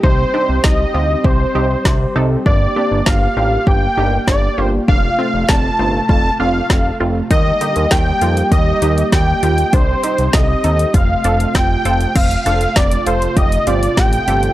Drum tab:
CC |----------------|----------------|----------------|----------------|
HH |----------------|----------------|----------------|x-xxx-xxx-xxx-xx|
SD |----o-------o---|----o-------o---|----o-------o---|----o-------o---|
BD |o---o---o---o---|o---o---o---o---|o---o---o---o---|o---o---o---o---|

CC |----------------|x---------------|
HH |x-xxx-xxx-xxx-xx|xxxxxxxxxxxxxxxx|
SD |----o-------o---|----o-------o---|
BD |o---o---o---o---|o---o---o---o---|